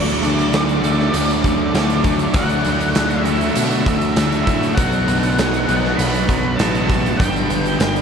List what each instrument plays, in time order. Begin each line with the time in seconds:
Already playing: picked electric bass D2, distorted electric guitar D3 A3 D4, clean electric guitar F#3, overdriven electric guitar F#3 F#4, lead electric guitar D5
0.08 closed hi-hat
0.22 picked electric bass D2, distorted electric guitar A3 D4, closed hi-hat
0.39 closed hi-hat
0.52 picked electric bass D2, distorted electric guitar D3 A3 D4, clean electric guitar F#3, snare, closed hi-hat
0.69 closed hi-hat
0.82 picked electric bass D2, overdriven electric guitar D3 F#3 F#4, distorted electric guitar A3 D4, closed hi-hat
1.00 snare
1.13 picked electric bass D2, distorted electric guitar D3 A3 D4, clean electric guitar F#3, closed hi-hat
1.29 closed hi-hat
1.43 picked electric bass D2, clean electric guitar F#3, distorted electric guitar A3 D4, kick, closed hi-hat
1.73 picked electric bass D2, distorted electric guitar D3 A3 D4, overdriven electric guitar F#3 F#4, snare, closed hi-hat
1.90 closed hi-hat
2.04 clean electric guitar F#3, distorted electric guitar A3 D4, kick, closed hi-hat
2.19 closed hi-hat
2.34 picked electric bass D2, distorted electric guitar D3 A3 D4, clean electric guitar F#3, overdriven electric guitar F#3 F#4, lead electric guitar F#5, kick, closed hi-hat
2.49 closed hi-hat
2.63 picked electric bass D2, clean electric guitar A3, distorted electric guitar D4, closed hi-hat
2.68 distorted electric guitar A3
2.80 closed hi-hat
2.93 picked electric bass D2, distorted electric guitar D3 A3, clean electric guitar F#3, snare, closed hi-hat
2.98 distorted electric guitar D4
3.10 closed hi-hat
3.20 lead electric guitar E5
3.25 overdriven electric guitar D3 F#3 F#4, distorted electric guitar A3 D4, closed hi-hat
3.41 closed hi-hat
3.54 picked electric bass B2, distorted electric guitar D3 A3 D4, clean electric guitar F#3, lead electric guitar E5, closed hi-hat
3.71 closed hi-hat
3.85 picked electric bass D2, clean electric guitar F#3, distorted electric guitar A3 D4, kick, closed hi-hat
4.01 closed hi-hat
4.16 picked electric bass D2, distorted electric guitar D3 A3 D4, overdriven electric guitar F#3 F#4, snare, closed hi-hat
4.32 closed hi-hat
4.44 picked electric bass A2, clean electric guitar F#3, distorted electric guitar D4, lead electric guitar E5, kick, closed hi-hat
4.49 distorted electric guitar A3
4.63 closed hi-hat
4.75 picked electric bass B1, distorted electric guitar B2 F#3 B3, lead electric guitar F#5, kick, closed hi-hat
4.79 overdriven electric guitar D4 F#4
4.92 closed hi-hat
5.06 picked electric bass B1, distorted electric guitar F#3 B3, closed hi-hat
5.23 closed hi-hat
5.36 picked electric bass B1, distorted electric guitar B2 F#3 B3, snare, closed hi-hat
5.54 closed hi-hat
5.66 picked electric bass B1, overdriven electric guitar B2 D4 F#4, distorted electric guitar F#3 B3, closed hi-hat
5.85 snare
5.97 picked electric bass B1, distorted electric guitar B2 F#3 B3, lead electric guitar B5, closed hi-hat
6.14 closed hi-hat
6.27 picked electric bass B1, distorted electric guitar F#3 B3, kick, closed hi-hat
6.57 picked electric bass A1, distorted electric guitar B2 F#3 B3, overdriven electric guitar D4, lead electric guitar A5, snare, closed hi-hat
6.61 overdriven electric guitar F#4
6.75 closed hi-hat
6.87 distorted electric guitar F#3 B3, kick, closed hi-hat
7.06 closed hi-hat
7.17 picked electric bass G1, distorted electric guitar G2 D3 G3, overdriven electric guitar B3 D4 G4, lead electric guitar G5, kick, closed hi-hat
7.36 closed hi-hat
7.48 picked electric bass G1, distorted electric guitar D3 G3, clean electric guitar B3, closed hi-hat
7.65 closed hi-hat
7.77 picked electric bass G1, distorted electric guitar G2 D3 G3, lead electric guitar G5, snare, closed hi-hat
7.96 closed hi-hat